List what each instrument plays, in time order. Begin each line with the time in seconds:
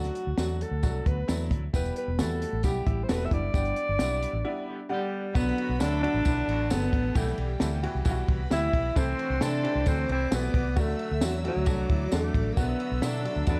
Already playing: upright piano F#3 A3 D4 F#4, alto saxophone F#4
0.04 snare, closed hi-hat
0.15 closed hi-hat
0.27 fingered electric bass D2
0.37 fingered electric bass E2, upright piano F#3 A3 D4 F#4, alto saxophone F#4, snare, closed hi-hat, tambourine
0.61 alto saxophone A4, closed hi-hat
0.71 fingered electric bass D2
0.83 fingered electric bass C2, upright piano F#3 A3 D4 F#4, kick, closed hi-hat, tambourine
1.06 fingered electric bass D2, vibraphone B3, alto saxophone B4, kick, closed hi-hat
1.28 fingered electric bass E2, upright piano F#3 A3 D4 E4, snare, closed hi-hat, tambourine
1.40 snare
1.51 fingered electric bass D2, kick, closed hi-hat
1.73 fingered electric bass E1, upright piano G3 B3 E4 G4, vibraphone B3, alto saxophone B4, kick, closed hi-hat, tambourine
1.85 closed hi-hat
1.96 vibraphone B3, alto saxophone B4, closed hi-hat
2.08 fingered electric bass E1
2.19 fingered electric bass E2, upright piano G3 B3 E4 F#4, vibraphone A3, alto saxophone A4, snare, closed hi-hat, tambourine
2.42 closed hi-hat
2.53 fingered electric bass A1
2.63 fingered electric bass B1, upright piano G3 B3 E4 G4, vibraphone G3, alto saxophone G4, kick, closed hi-hat, tambourine
2.86 fingered electric bass A1, hollow-body jazz guitar G3 E4, kick, closed hi-hat
3.03 vibraphone C4, alto saxophone C5
3.09 fingered electric bass E1, upright piano G3 B3 E4 A4, hollow-body jazz guitar A3 F#4, vibraphone B3, alto saxophone B4, snare, closed hi-hat, tambourine
3.21 snare
3.25 vibraphone E4, alto saxophone E5
3.31 fingered electric bass F#1, hollow-body jazz guitar G3 E4, vibraphone D4, alto saxophone D5, kick, closed hi-hat
3.53 fingered electric bass G1, upright piano G3 B3 D4 G4, kick, closed hi-hat, tambourine
3.65 closed hi-hat
3.76 closed hi-hat
3.89 fingered electric bass G1
3.99 fingered electric bass B1, upright piano G3 B3 D4 E4, snare, closed hi-hat, tambourine
4.22 closed hi-hat
4.33 fingered electric bass A1
4.44 upright piano G3 B3 D4 E4
4.67 horn section D3 G3 B3 G4
4.89 horn section D3 G3 B3 G4, upright piano G3 B3 D4 F#5, alto saxophone G3, vibraphone G4
5.34 fingered electric bass B1, upright piano D3 F#3 B3 D4 F#4, alto saxophone B3, vibraphone B4, violin section B4 B5, kick, ride, tambourine
5.47 snare
5.58 horn section D3 F#3 B3 F#4, ride
5.69 fingered electric bass B1
5.79 fingered electric bass D2, upright piano D3 F#3 B3 D4 F#4, horn section F#3 A3 D4 A4, alto saxophone D4, vibraphone D5, snare, ride, tambourine
6.02 upright piano D3 F#3 B3 D4 F#4, alto saxophone D4, vibraphone D5, ride
6.14 fingered electric bass A1
6.25 fingered electric bass B1, upright piano D3 F#3 B3 D4 E4, horn section F#3 B3 D4 B4, violin section A4 A5, kick, ride, tambourine
6.48 fingered electric bass A1, horn section D3 F#3 B3 F#4, ride
6.70 fingered electric bass G1, upright piano D3 F#3 B3 D4 A4, alto saxophone B3, vibraphone B4, snare, ride, tambourine
6.82 snare
6.93 fingered electric bass A1, kick, ride
7.15 fingered electric bass B1, upright piano E3 G3 B3 E4 G4, alto saxophone A3, violin section G4 G5, vibraphone A4, kick, ride, tambourine
7.27 snare
7.32 alto saxophone A3, vibraphone A4
7.38 fingered electric bass B1, alto saxophone G3, vibraphone G4, ride
7.60 fingered electric bass D2, upright piano E3 G3 B3 E4 A4, snare, ride, tambourine
7.83 upright piano E3 G3 B3 E4 F#4, ride
7.95 fingered electric bass C2
8.05 fingered electric bass B1, upright piano E3 G3 B3 E4 F4, kick, ride, tambourine
8.11 upright piano F#4
8.28 fingered electric bass C2, violin section B4 B5, kick, ride
8.50 fingered electric bass D2, upright piano E3 G3 B3 E4 G4, alto saxophone E4, vibraphone E5, snare, ride, tambourine
8.73 fingered electric bass B1, kick, ride
8.95 fingered electric bass C2, upright piano E3 A3 C4 E4 A4, alto saxophone C4, vibraphone C5, violin section C5 C6, kick, ride, tambourine
9.18 horn section F#3 D4 F#4, ride
9.30 fingered electric bass C2
9.40 fingered electric bass C3, upright piano E3 A3 C4 E4 A4, horn section E3 A3 C4 A4, alto saxophone D4, vibraphone D5, snare, ride, tambourine
9.63 upright piano E3 A3 C4 E4 G4, ride
9.75 fingered electric bass C2
9.86 fingered electric bass D2, upright piano E3 A3 C4 E4 A4, horn section F#3 D4 F#4, alto saxophone C4, vibraphone C5, kick, ride, tambourine
10.09 fingered electric bass C2, horn section C3 E3 A3 E4, alto saxophone C4, vibraphone C5, violin section D5 D6, ride
10.31 fingered electric bass B1, upright piano C3 E3 A3 E4 F#4, alto saxophone B3, vibraphone B4, snare, ride, tambourine
10.54 fingered electric bass C2, kick, ride
10.76 fingered electric bass D2, upright piano D3 F#3 A3 D4 F#4, vibraphone A4, violin section E5 E6, kick, ride, tambourine
10.80 alto saxophone A3
10.88 snare
10.99 ride
11.11 fingered electric bass D2
11.21 fingered electric bass E2, upright piano D3 F#3 A3 D4 F#4, alto saxophone F#3, vibraphone F#4, snare, ride, tambourine
11.44 upright piano D3 F#3 A3 D4 F#4, alto saxophone F#3, vibraphone F#4, ride
11.56 fingered electric bass D2
11.66 fingered electric bass C2, upright piano D3 F#3 A3 D4 A4, hollow-body jazz guitar A3 F#4, violin section D5 D6, kick, ride, tambourine
11.89 fingered electric bass D2, hollow-body jazz guitar E4, kick, ride
12.11 fingered electric bass E2, upright piano D3 F#3 A3 D4 A4, hollow-body jazz guitar F#3 D4, alto saxophone A3, vibraphone A4, snare, ride, tambourine
12.34 fingered electric bass A1, kick, ride
12.51 alto saxophone A#3, vibraphone A#4
12.57 fingered electric bass B1, upright piano D3 F#3 B3 D4 F#4, alto saxophone B3, vibraphone B4, violin section E5 E6, kick, ride, tambourine
12.79 horn section D3 F#3 B3 F#4, ride
12.91 fingered electric bass B1
13.02 fingered electric bass B2, upright piano D3 F#3 B3 D4 E4, hollow-body jazz guitar D3 B3, horn section F#3 A3 D4 A4, alto saxophone D4, vibraphone D5, snare, ride, tambourine
13.24 upright piano D3 F#3 B3 D4 F#4, hollow-body jazz guitar F#3 D4, ride
13.36 fingered electric bass D2
13.47 fingered electric bass E2, upright piano D3 F#3 B3 C4 A4, horn section F#3 B3 D4 B4, hollow-body jazz guitar A3 F#4, alto saxophone D4, vibraphone D5, kick, ride, tambourine
13.53 upright piano D4